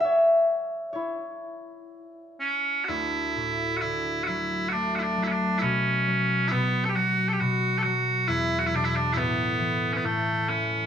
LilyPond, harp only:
\new Staff \with { instrumentName = "Harp" } { \clef bass \time 3/4 \key d \major \tempo 4 = 67 <cis'' e''>4 <e' cis''>4. r8 | d,8 a,8 d8 fis8 a8 fis8 | b,8 fis8 b,8 fis8 b,8 fis8 | e,8 b,8 a,8 e8 a,8 e8 | }